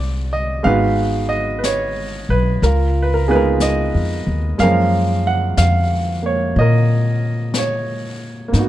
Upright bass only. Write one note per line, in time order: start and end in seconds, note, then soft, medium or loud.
0.00 0.61 C2 medium
0.65 2.25 G#1 medium
2.29 2.59 B1 medium
2.62 3.89 C#2 medium
3.95 4.24 F2 soft
4.27 4.57 D#2 medium
4.59 5.54 F#2 medium
5.58 6.52 F2 medium
6.56 8.49 A#2 medium
8.53 8.69 G#2 medium